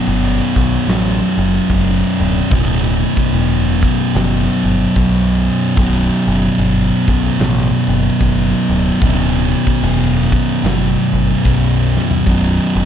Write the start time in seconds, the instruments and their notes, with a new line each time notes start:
Already playing: distorted electric guitar B1 F#2 B2
0.07 picked electric bass G1, crash
0.56 picked electric bass B1, kick
0.87 picked electric bass A1, distorted electric guitar B1 F#2 B2, snare, crash
1.38 picked electric bass F#1
1.70 picked electric bass F#1, kick, crash
2.20 picked electric bass D1
2.50 picked electric bass D1, distorted electric guitar B1 F#2 B2, kick, crash
3.17 kick
3.33 picked electric bass E1, crash
3.83 kick
4.14 picked electric bass F#1, distorted electric guitar B1 F#2 B2, snare, crash
4.64 picked electric bass G1
4.96 picked electric bass B1, kick, crash
5.77 picked electric bass B0, distorted electric guitar B1 F#2 B2, kick, crash
6.27 picked electric bass F#1
6.45 snare
6.58 picked electric bass G1, crash
7.08 picked electric bass B1, kick
7.39 picked electric bass A1, distorted electric guitar B1 F#2 B2, snare, crash
7.88 picked electric bass F#1
8.21 picked electric bass F#1, kick, crash
8.70 picked electric bass D1
9.01 picked electric bass D1, distorted electric guitar B1 F#2 B2, kick, crash
9.67 kick
9.83 picked electric bass E1, crash
10.32 kick
10.64 picked electric bass F#1, distorted electric guitar B1 F#2 B2, snare, crash
11.13 picked electric bass G1
11.45 picked electric bass B1, kick, crash
11.97 snare
12.11 floor tom
12.26 picked electric bass B0, distorted electric guitar B1 F#2 B2, kick, crash
12.76 picked electric bass F#1